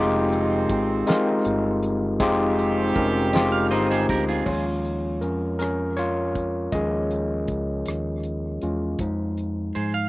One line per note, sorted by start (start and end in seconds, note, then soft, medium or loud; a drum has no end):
0.00 0.65 F1 loud
0.00 1.78 D#3 medium
0.00 0.80 G#3 medium
0.00 1.78 G#3 medium
0.00 0.80 C4 medium
0.00 1.78 C4 medium
0.00 0.81 D#4 medium
0.00 0.81 F4 medium
0.00 0.46 G4 medium
0.00 0.81 G4 loud
0.00 0.46 A#4 medium
0.32 closed hi-hat medium
0.69 1.04 G#1 loud
0.69 kick medium
0.69 closed hi-hat medium
1.06 1.93 G#3 medium
1.06 1.94 C4 medium
1.06 1.94 D#4 medium
1.06 1.94 F4 medium
1.06 1.95 A#4 medium
1.06 snare loud
1.06 closed hi-hat medium
1.45 2.21 G1 medium
1.45 closed hi-hat medium
1.83 closed hi-hat soft
2.20 2.92 F1 loud
2.20 4.05 D#3 medium
2.20 3.07 G#3 medium
2.20 4.05 C4 medium
2.20 3.07 C4 medium
2.20 3.07 D#4 medium
2.20 3.08 F4 medium
2.20 4.05 G4 medium
2.20 3.08 G4 loud
2.20 kick loud
2.20 closed hi-hat medium
2.59 closed hi-hat soft
2.95 3.72 F1 medium
2.95 3.68 C#4 medium
2.95 3.73 A#4 medium
2.95 kick medium
2.95 closed hi-hat soft
3.33 4.20 G#3 medium
3.33 4.20 C4 medium
3.33 3.72 D#4 medium
3.33 4.21 F4 medium
3.33 4.21 G4 medium
3.33 snare loud
3.33 closed hi-hat medium
3.52 3.70 F5 medium
3.71 4.06 G1 medium
3.71 4.43 D#4 medium
3.71 4.49 C5 medium
3.71 3.89 C5 medium
3.71 3.89 D#5 medium
3.71 closed hi-hat soft
3.91 4.09 G#4 medium
3.91 4.08 C5 medium
4.09 4.43 D2 medium
4.09 4.27 G4 medium
4.09 4.27 A#4 medium
4.09 kick loud
4.09 closed hi-hat soft
4.29 4.64 F4 medium
4.29 4.64 G#4 medium
4.46 5.22 D#2 medium
4.46 6.69 F3 soft
4.46 6.69 G#3 soft
4.46 5.22 C#4 medium
4.46 5.18 F4 medium
4.46 5.24 C#5 medium
4.46 kick medium
4.46 crash medium
4.85 closed hi-hat soft
5.21 6.69 F2 medium
5.21 5.58 C#4 medium
5.21 5.58 A#4 medium
5.21 closed hi-hat soft
5.59 5.78 C#4 medium
5.59 5.76 A#4 medium
5.59 cross-stick medium
5.59 closed hi-hat medium
5.97 6.70 F4 medium
5.97 6.68 C#5 medium
5.97 closed hi-hat soft
6.35 kick medium
6.35 closed hi-hat soft
6.72 7.44 D#2 medium
6.72 7.82 F3 soft
6.72 7.82 G#3 soft
6.72 7.83 C#4 medium
6.72 7.55 G#4 medium
6.72 7.53 D#5 medium
6.72 kick medium
6.72 closed hi-hat medium
7.11 closed hi-hat soft
7.48 7.83 C#2 medium
7.48 kick medium
7.48 closed hi-hat soft
7.86 8.58 D#2 medium
7.86 cross-stick medium
7.86 closed hi-hat medium
8.23 closed hi-hat soft
8.62 8.96 E2 medium
8.62 8.96 G#3 soft
8.62 8.96 C#4 soft
8.62 8.96 F4 soft
8.62 closed hi-hat soft
8.99 9.71 F2 loud
8.99 10.09 F3 soft
8.99 10.09 G#3 soft
8.99 10.09 D#4 medium
8.99 kick medium
8.99 closed hi-hat medium
9.38 closed hi-hat soft
9.75 10.09 G#2 medium
9.75 9.93 G#4 medium
9.75 9.93 C5 medium
9.75 closed hi-hat soft
9.94 10.09 F5 medium